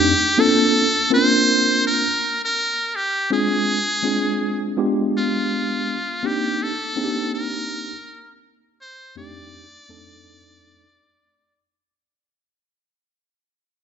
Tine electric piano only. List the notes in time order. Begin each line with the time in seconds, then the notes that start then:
Already playing: F2 A3 C4 D4 D#4 G4
0.38 A#3 C4 D4 F4 A4
1.10 A#3 C4 C#4 F4 A#4
1.18 D4
3.30 G#3 C4 D4 F4 G#4
4.03 G#3 C4 D4 F4 G#4
4.77 G#3 B3 D4 F4 G4
6.23 A#3 C4 D4 D#4 G4
6.96 A#3 C4 D4 D#4 G#4
7.04 G4
9.15 F2 A3 C4 D4 D#4 G4
9.88 F2 A3 C4 D4 D#4 A4